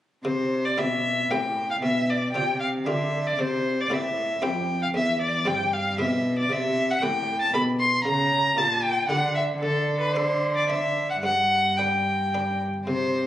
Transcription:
0.25 0.79 C3 soft
0.25 0.74 C3 soft
0.25 0.67 C5 medium
0.65 0.80 D5 medium
0.77 1.30 B2 soft
0.77 1.26 B2 soft
0.77 1.16 C4 soft
0.77 1.16 E4 soft
0.77 1.16 G4 soft
0.77 1.32 E5 medium
1.30 1.81 A2 soft
1.30 1.79 A2 soft
1.30 1.68 C4 soft
1.30 1.69 E4 soft
1.30 1.69 G4 soft
1.30 1.70 G5 medium
1.71 1.76 F5 medium
1.81 2.33 B2 soft
1.81 2.31 B2 soft
1.81 2.11 E5 medium
2.10 2.32 D5 medium
2.33 2.88 C3 soft
2.33 2.83 C3 soft
2.33 2.72 D4 soft
2.33 2.73 F4 soft
2.33 2.73 G4 soft
2.33 2.59 G5 medium
2.60 2.68 F5 medium
2.86 3.38 D3 soft
2.86 3.35 D3 soft
2.86 3.24 D4 soft
2.86 3.25 F4 soft
2.86 3.25 G4 soft
2.86 3.29 E5 soft
3.27 3.42 D5 medium
3.39 3.90 C3 medium
3.39 3.87 C3 soft
3.39 3.82 C5 medium
3.80 3.95 D5 medium
3.90 4.39 A2 soft
3.90 4.42 A2 soft
3.90 4.28 C4 soft
3.90 4.29 E4 soft
3.90 4.29 G4 soft
3.90 4.45 E5 medium
4.42 4.90 F2 soft
4.42 4.94 F2 soft
4.42 4.80 C4 soft
4.42 4.80 E4 soft
4.42 4.80 G4 soft
4.42 4.82 G5 medium
4.83 4.88 F5 medium
4.94 5.42 E2 soft
4.94 5.48 E2 medium
4.94 5.20 E5 medium
5.21 5.49 D5 medium
5.45 5.94 G2 soft
5.45 6.00 G2 soft
5.45 5.83 C4 soft
5.45 5.84 E4 soft
5.45 5.84 G4 soft
5.45 5.75 G5 medium
5.73 5.98 F5 medium
5.98 6.50 B2 medium
5.98 6.46 B2 soft
5.98 6.36 C4 soft
5.98 6.36 E4 soft
5.98 6.36 G4 soft
5.98 6.37 E5 medium
6.39 6.54 D5 medium
6.50 6.98 C3 soft
6.50 7.01 C3 medium
6.50 6.92 E5 medium
6.91 7.04 F#5 medium
7.02 7.50 A2 soft
7.02 7.53 A2 medium
7.02 7.40 A3 soft
7.02 7.40 E4 soft
7.02 7.40 G4 soft
7.02 7.41 G5 medium
7.41 7.54 A5 medium
7.54 8.02 B2 soft
7.54 8.05 B2 medium
7.54 7.91 A3 soft
7.54 7.91 E4 soft
7.54 7.92 G4 soft
7.54 7.62 B5 medium
7.80 8.04 C6 medium
8.04 8.53 C#3 soft
8.04 8.57 C#3 medium
8.04 8.59 A#5 medium
8.57 9.05 A#2 soft
8.57 9.08 A#2 medium
8.57 8.95 E4 soft
8.57 8.95 G4 soft
8.57 8.84 A5 medium
8.82 9.07 G5 medium
9.08 9.57 D3 soft
9.08 9.61 D3 medium
9.08 9.47 E4 soft
9.08 9.48 G4 soft
9.08 9.34 F#5 medium
9.35 9.43 E5 medium
9.61 11.19 D3 medium
9.61 11.19 D3 soft
9.61 10.00 A4 medium
10.01 10.15 B4 medium
10.13 10.54 D4 soft
10.13 10.54 A4 soft
10.13 10.54 C5 medium
10.57 10.69 D5 medium
10.69 11.20 D4 soft
10.69 11.20 C5 soft
10.69 11.09 E5 medium
11.10 11.16 F#5 soft
11.22 12.63 G2 soft
11.22 11.78 F#5 medium
11.77 12.18 D4 soft
11.77 12.18 B4 soft
11.77 12.59 G5 medium
12.34 12.73 D4 soft
12.34 12.73 B4 soft
12.86 13.27 C3 medium
12.86 13.27 C3 soft
12.86 13.27 C5 medium

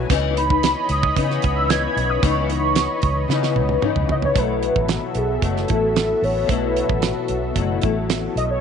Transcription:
0.00 0.10 A3 medium
0.00 0.11 E4 medium
0.09 0.73 C#2 loud
0.09 0.36 C#3 loud
0.09 4.32 E3 medium
0.09 0.36 E3 loud
0.09 0.37 B3 loud
0.09 0.35 D#4 loud
0.09 4.32 C#5 medium
0.09 2.21 D#5 medium
0.09 4.32 B5 medium
0.09 kick loud
0.09 closed hi-hat loud
0.36 1.16 E3 soft
0.36 1.17 B3 soft
0.36 1.16 D#4 medium
0.36 0.92 B5 loud
0.36 closed hi-hat medium
0.50 kick loud
0.63 snare loud
0.63 closed hi-hat loud
0.89 1.11 C#2 loud
0.89 1.58 D#6 loud
0.89 closed hi-hat medium
1.03 kick loud
1.15 1.67 C#3 medium
1.15 1.38 C#3 loud
1.15 1.69 E3 medium
1.15 1.70 B3 medium
1.15 1.70 D#4 medium
1.15 kick loud
1.15 closed hi-hat medium
1.30 snare soft
1.42 1.86 C#2 loud
1.42 kick loud
1.42 closed hi-hat medium
1.56 1.71 E6 loud
1.68 2.21 C#3 medium
1.68 2.23 E3 medium
1.68 2.23 B3 medium
1.68 2.23 D#4 medium
1.68 2.11 G#6 loud
1.68 snare loud
1.68 closed hi-hat loud
1.97 2.18 B1 medium
1.97 closed hi-hat medium
2.10 2.24 D#6 loud
2.22 2.86 C#2 loud
2.22 2.49 C#3 medium
2.22 2.49 E3 medium
2.22 2.49 B3 loud
2.22 2.48 D#4 medium
2.22 4.34 D#5 medium
2.22 3.83 C#6 loud
2.22 kick loud
2.22 closed hi-hat loud
2.49 3.29 E3 soft
2.49 3.30 B3 soft
2.49 3.29 D#4 soft
2.49 closed hi-hat medium
2.75 snare loud
2.75 closed hi-hat loud
3.02 3.24 C#2 loud
3.02 kick medium
3.02 closed hi-hat medium
3.28 3.80 C#3 medium
3.28 3.57 C#3 loud
3.28 3.82 E3 medium
3.28 3.83 B3 medium
3.28 3.83 D#4 medium
3.28 snare medium
3.43 snare medium
3.56 3.77 C#2 loud
3.56 high tom medium
3.69 high tom medium
3.81 4.33 C#3 medium
3.81 4.35 E3 medium
3.81 4.37 B3 medium
3.81 4.37 D#4 medium
3.81 muted fingered electric bass stroke medium
3.81 mid tom loud
3.96 4.06 C#2 medium
3.96 mid tom loud
4.09 4.30 C#3 loud
4.09 4.17 D#5 loud
4.09 floor tom loud
4.22 4.40 C#5 loud
4.22 floor tom loud
4.33 4.68 B1 medium
4.33 5.40 B2 medium
4.33 5.41 F#3 medium
4.33 5.42 A3 medium
4.33 8.59 B3 medium
4.33 8.59 F#4 medium
4.33 8.59 A4 medium
4.33 8.59 E5 medium
4.33 kick loud
4.33 closed hi-hat medium
4.38 5.44 E4 medium
4.38 5.19 B4 loud
4.63 closed hi-hat medium
4.76 4.97 A1 medium
4.76 kick medium
4.89 snare loud
4.89 closed hi-hat medium
5.15 5.37 B1 loud
5.15 5.46 G#4 medium
5.15 closed hi-hat medium
5.41 5.64 F#1 medium
5.41 5.69 B2 medium
5.41 5.69 F#3 medium
5.41 5.68 A3 medium
5.41 5.67 E4 medium
5.41 6.25 A4 loud
5.41 kick loud
5.41 closed hi-hat medium
5.57 snare soft
5.68 6.12 A1 medium
5.68 6.47 F#3 soft
5.68 6.49 A3 soft
5.68 6.51 E4 soft
5.68 kick medium
5.68 closed hi-hat medium
5.96 snare loud
5.96 closed hi-hat loud
6.22 6.44 A1 medium
6.22 6.52 C#5 medium
6.22 open hi-hat soft
6.46 6.81 B1 loud
6.46 7.53 B2 medium
6.46 7.54 F#3 medium
6.46 7.55 A3 medium
6.46 7.57 B4 loud
6.46 kick loud
6.46 closed hi-hat loud
6.51 7.57 E4 medium
6.77 closed hi-hat medium
6.89 7.11 A1 medium
6.89 kick medium
7.02 snare loud
7.02 closed hi-hat medium
7.28 7.51 B1 loud
7.28 closed hi-hat medium
7.54 7.77 F#1 medium
7.54 7.82 B2 medium
7.54 7.83 F#3 medium
7.54 7.82 A3 medium
7.54 7.80 E4 medium
7.54 kick medium
7.54 closed hi-hat medium
7.82 8.26 A1 medium
7.82 8.61 F#3 soft
7.82 8.61 A3 medium
7.82 8.61 E4 medium
7.82 kick medium
7.82 closed hi-hat medium
8.10 snare loud
8.10 closed hi-hat loud
8.36 8.57 B1 medium
8.36 8.49 D#5 loud
8.36 closed hi-hat medium
8.50 8.61 C#5 loud

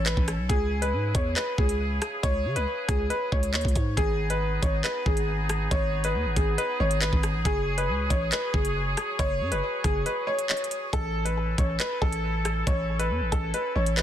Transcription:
0.00 0.16 A1 loud
0.00 3.80 C#4 medium
0.00 3.80 E4 medium
0.00 0.46 A4 medium
0.06 0.23 B4 medium
0.06 clap loud
0.06 closed hi-hat medium
0.17 0.40 A1 loud
0.17 kick loud
0.28 cross-stick loud
0.28 closed hi-hat medium
0.39 0.49 B1 loud
0.49 0.95 C#2 loud
0.49 3.80 C#3 medium
0.49 0.80 G#4 loud
0.49 3.80 G#4 medium
0.49 kick loud
0.49 closed hi-hat medium
0.82 1.13 B4 medium
0.82 closed hi-hat medium
0.93 1.14 G#2 loud
1.15 1.36 E2 loud
1.15 1.32 C#5 medium
1.15 kick loud
1.15 closed hi-hat medium
1.36 1.54 B4 medium
1.36 clap loud
1.36 closed hi-hat medium
1.58 2.00 C#2 loud
1.58 2.20 G#4 medium
1.58 kick loud
1.69 closed hi-hat medium
2.02 cross-stick loud
2.02 closed hi-hat medium
2.23 2.47 C#2 loud
2.23 2.54 C#5 loud
2.23 kick loud
2.23 closed hi-hat medium
2.45 2.58 C#3 loud
2.56 2.66 C#2 loud
2.56 2.87 B4 medium
2.56 closed hi-hat medium
2.88 3.10 C#2 loud
2.88 3.06 G#4 medium
2.88 kick medium
2.88 cross-stick medium
2.88 closed hi-hat medium
3.10 3.28 B4 medium
3.10 closed hi-hat medium
3.32 3.55 C#2 loud
3.32 3.50 C#5 medium
3.32 kick loud
3.43 closed hi-hat medium
3.54 3.64 D#2 loud
3.54 3.95 C#5 medium
3.54 clap loud
3.54 closed hi-hat soft
3.61 3.75 C#2 loud
3.61 kick loud
3.61 closed hi-hat medium
3.68 closed hi-hat medium
3.75 3.97 G#2 loud
3.75 kick loud
3.75 closed hi-hat medium
3.97 4.60 G#1 loud
3.97 7.42 B3 medium
3.97 7.42 D#4 medium
3.97 4.28 G#4 loud
3.97 10.89 G#4 medium
3.97 kick loud
3.97 closed hi-hat medium
4.30 4.61 B4 medium
4.30 closed hi-hat medium
4.62 4.83 G#1 loud
4.62 4.80 C#5 medium
4.62 kick loud
4.62 closed hi-hat medium
4.84 5.02 B4 medium
4.84 clap loud
4.84 closed hi-hat medium
5.06 5.69 G#1 loud
5.06 5.67 G#4 medium
5.06 kick loud
5.17 closed hi-hat medium
5.49 cross-stick loud
5.49 closed hi-hat medium
5.71 6.16 G#1 loud
5.71 6.02 C#5 loud
5.71 kick loud
5.71 closed hi-hat medium
6.04 6.35 B4 medium
6.04 closed hi-hat medium
6.15 6.27 D#2 loud
6.26 6.36 G#1 loud
6.36 6.57 G#1 loud
6.36 6.54 G#4 medium
6.36 kick loud
6.36 closed hi-hat medium
6.58 6.76 B4 medium
6.58 closed hi-hat medium
6.80 7.11 G#1 loud
6.80 6.97 C#5 medium
6.91 closed hi-hat medium
7.01 7.19 B4 medium
7.01 clap loud
7.01 closed hi-hat medium
7.13 7.36 G#1 loud
7.13 kick loud
7.23 cross-stick loud
7.23 closed hi-hat medium
7.34 7.45 A1 loud
7.45 7.90 F#1 loud
7.45 10.90 F#3 medium
7.45 10.90 F#4 medium
7.45 7.76 G#4 loud
7.45 10.90 C#5 medium
7.45 kick loud
7.45 closed hi-hat medium
7.78 8.08 B4 medium
7.78 closed hi-hat medium
7.89 8.09 C#2 loud
8.10 8.31 A1 loud
8.10 8.28 C#5 medium
8.10 kick loud
8.10 closed hi-hat medium
8.32 8.50 B4 medium
8.32 clap loud
8.32 closed hi-hat medium
8.54 8.96 F#1 loud
8.54 9.15 G#4 medium
8.54 kick loud
8.65 closed hi-hat medium
8.97 cross-stick loud
8.97 closed hi-hat medium
9.19 9.42 F#1 loud
9.19 9.50 C#5 loud
9.19 kick loud
9.19 closed hi-hat medium
9.41 9.53 F#2 loud
9.52 9.62 F#1 loud
9.52 9.82 B4 medium
9.52 closed hi-hat medium
9.84 10.05 F#1 loud
9.84 10.02 G#4 medium
9.84 kick loud
9.84 cross-stick medium
9.84 closed hi-hat medium
10.06 10.23 B4 medium
10.06 closed hi-hat medium
10.27 10.45 C#5 medium
10.39 closed hi-hat medium
10.49 10.90 C#5 medium
10.49 clap loud
10.49 closed hi-hat soft
10.57 closed hi-hat medium
10.64 closed hi-hat medium
10.71 closed hi-hat medium
10.93 11.56 A1 loud
10.93 14.03 C#4 medium
10.93 14.03 E4 medium
10.93 14.03 A4 medium
10.93 11.24 A4 loud
10.93 kick loud
10.93 closed hi-hat medium
11.25 11.56 B4 medium
11.25 closed hi-hat medium
11.58 11.79 A1 loud
11.58 11.76 C#5 medium
11.58 kick loud
11.58 closed hi-hat medium
11.80 11.97 B4 loud
11.80 clap loud
11.80 closed hi-hat medium
12.02 12.64 A1 loud
12.02 12.63 A4 loud
12.02 kick loud
12.12 closed hi-hat medium
12.45 cross-stick loud
12.45 closed hi-hat medium
12.67 13.12 A1 loud
12.67 12.98 C#5 medium
12.67 kick loud
12.67 closed hi-hat medium
12.99 13.30 B4 medium
12.99 closed hi-hat medium
13.10 13.23 E2 loud
13.21 13.32 A1 medium
13.32 13.53 A1 loud
13.32 13.50 A4 medium
13.32 kick medium
13.32 closed hi-hat medium
13.54 13.71 B4 medium
13.54 closed hi-hat medium
13.76 14.03 A1 loud
13.76 13.93 C#5 medium
13.86 closed hi-hat medium
13.97 14.03 B4 medium
13.97 clap loud
13.97 closed hi-hat medium

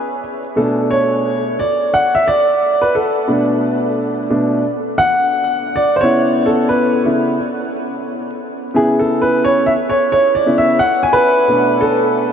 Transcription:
0.00 0.18 G#4 medium
0.56 1.54 B2 soft
0.56 1.55 A3 medium
0.56 1.55 D4 medium
0.56 0.88 A4 medium
0.91 1.61 C#5 medium
1.59 1.94 D5 medium
1.94 2.14 F#5 loud
2.15 2.26 E5 loud
2.28 2.83 D5 loud
2.82 2.94 B4 medium
2.95 3.27 A4 medium
3.28 4.29 B2 medium
3.28 4.29 A3 soft
3.28 4.29 D4 medium
4.30 4.61 B2 medium
4.30 4.61 A3 soft
4.30 4.61 D4 medium
4.98 5.81 F#5 loud
5.76 5.95 D5 medium
5.96 6.02 C5 medium
6.01 7.03 C#3 soft
6.01 7.04 B3 soft
6.01 7.04 E4 medium
6.01 6.48 C#5 medium
6.46 6.67 A4 medium
6.69 7.01 B4 medium
7.04 7.35 C#3 medium
7.04 7.35 B3 soft
7.04 7.35 E4 medium
8.74 9.72 C#3 medium
8.74 9.73 B3 soft
8.74 9.73 E4 medium
8.74 8.99 G#4 medium
8.99 9.22 A4 medium
9.22 9.42 B4 medium
9.44 9.65 C#5 medium
9.66 9.71 E5 medium
9.89 10.11 C#5 medium
10.12 10.35 C#5 medium
10.35 10.55 D5 medium
10.46 10.76 C#3 medium
10.46 10.76 B3 soft
10.46 10.77 E4 medium
10.58 10.80 E5 loud
10.79 11.02 F#5 loud
11.03 11.45 G#5 loud
11.13 11.83 B4 loud
11.48 12.33 B2 medium
11.48 12.33 A3 soft
11.48 12.33 D4 medium
11.81 12.33 A4 loud

